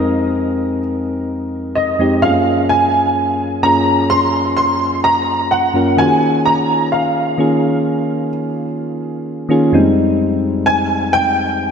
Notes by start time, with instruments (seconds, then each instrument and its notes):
Already playing: synth keys F2 G#3 C4 D#4 G4 G#4 A#4, grand piano D#5
1.75 grand piano D#5
1.99 synth keys F2 G#3 C4 D#4 G4
2.22 synth keys F#2 G#3 C#4 F4 G#4, grand piano F5
2.29 synth keys A#3
2.69 grand piano G#5
3.63 synth keys F#2 A#3 C#4 F4 G#4, grand piano A#5
4.10 grand piano C6
4.57 grand piano C6
5.04 grand piano A#5
5.51 grand piano F#5
5.74 synth keys F#2 A#3 C#4 F4 A#4
5.97 synth keys D#3 A#3 C#4 F4 F#4, grand piano G#5
6.06 synth keys G#4
6.45 grand piano A#5
6.92 grand piano F5
7.38 synth keys D#3 A#3 C#4 F4 G#4
9.49 synth keys D#3 A#3 C#4 F4 G#4
9.72 synth keys F2 G3 G#3 C4 D#4
10.66 grand piano G#5
11.13 grand piano G5